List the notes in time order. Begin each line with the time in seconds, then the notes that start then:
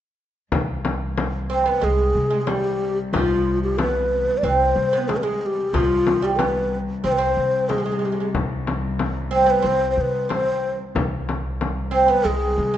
0.51 C2, frame drum
0.85 frame drum
1.18 frame drum
1.50 C4 C5
1.66 B3 B4
1.81 C2 G#3 G#4
2.15 C3
2.30 G#3
2.41 G#4
2.47 G3 G4, frame drum
3.13 C2 F3 F4, frame drum
3.63 G4
3.78 B3 B4, frame drum
4.38 D5
4.43 C2 C4 B4
4.57 C5
4.76 C3
4.93 B3
5.08 G#3 G#4, frame drum
5.17 B4
5.23 G#3 G#4
5.41 G#4
5.46 G4
5.73 C2 F3 F4, frame drum
6.07 frame drum
6.22 G3 G4
6.38 B3 B4, frame drum
7.04 C2 C4 C5
7.12 B4
7.18 C4 C5
7.37 C3
7.69 G#3 G#4, frame drum
7.78 G#3
7.86 G#3
7.92 G#3
7.99 G#3 G#4
8.05 G#3 G4
8.12 G#3
8.20 G#3
8.35 C2, frame drum
8.67 frame drum
8.99 frame drum
9.31 C4 C5
9.46 B3 B4
9.62 C2 C4
9.67 C5
9.91 C5
9.97 C3 B4
10.29 C4, frame drum
10.33 C5
10.94 C2, frame drum
11.29 frame drum
11.61 frame drum
11.91 C4 C5
12.08 B3 B4
12.24 C2 G#3 G#4
12.58 C3
12.74 G#3